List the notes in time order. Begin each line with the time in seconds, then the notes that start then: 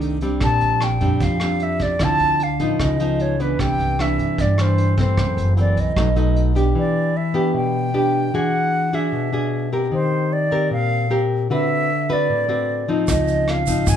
Already playing: C2 C3 D#3 A3 D4
0.01 closed hi-hat
0.21 G3 C4 D4, closed hi-hat
0.41 A#1 A#2 A5, kick, cross-stick, closed hi-hat
0.61 A#1, closed hi-hat
0.81 G5, cross-stick, closed hi-hat
1.01 F2 G3 C4 D4, closed hi-hat
1.20 F2 F3 F5, kick, closed hi-hat
1.40 G3 C4 D4, cross-stick, closed hi-hat
1.60 E5, closed hi-hat
1.79 D5, kick, closed hi-hat
1.99 D2 D3 F3 C4 E4, kick, cross-stick, closed hi-hat
2.04 A5
2.19 D2, closed hi-hat
2.40 F5, closed hi-hat
2.59 A1 F3 B3 D#4, closed hi-hat
2.79 C#2 C#3 D#5, kick, cross-stick, closed hi-hat
3.00 F3 B3 D#4, closed hi-hat
3.20 C#5, closed hi-hat
3.39 E3 B3 D4 B4, closed hi-hat
3.59 C2 C3 G5, kick, cross-stick, closed hi-hat
3.79 C2, closed hi-hat
3.99 E3 B3 D4 E5, cross-stick, closed hi-hat
4.18 G2, closed hi-hat
4.38 G2 D5, kick, closed hi-hat
4.58 E3 D4 C5, cross-stick, closed hi-hat
4.78 closed hi-hat
4.97 E3 A3 C4 C5, kick, closed hi-hat
5.17 F#1 F#2, kick, cross-stick, closed hi-hat
5.37 F#1, closed hi-hat
5.57 E3 A3 C4 D5, closed hi-hat
5.76 C2 D#5, closed hi-hat
5.96 B1 B2 F#3 A3 D#4, kick, cross-stick, closed hi-hat
6.16 F#3 A3 D#4, closed hi-hat
6.36 closed hi-hat
6.55 B3 D4 G4, closed hi-hat
6.75 E3 D5
7.17 E5
7.34 B3 D4 G4
7.54 B2 G5
7.94 B3 D4 G4
8.34 E3 D4 F#4 G#4 F#5
8.93 D4 F#4 G#4 E5
9.12 B2
9.33 D4 F#4 G#4
9.72 C4 G4 A#4
9.92 D#3 C5
10.33 D5
10.51 C4 G4 A#4
10.71 A#2 F5
11.10 C4 G4 A#4
11.50 D3 C4 F#4 B4 E5
12.09 C4 F#4 B4 D5
12.29 A2
12.49 C4 F#4 B4
12.89 F3 C4 D#4
13.08 C#2 C#3 D#5, kick, cross-stick, closed hi-hat, shaker
13.28 closed hi-hat, shaker
13.48 F5, cross-stick, closed hi-hat
13.67 G#1 F3 C4 D#4, kick, closed hi-hat, shaker
13.87 G#1 G#2 G#5, kick, closed hi-hat, shaker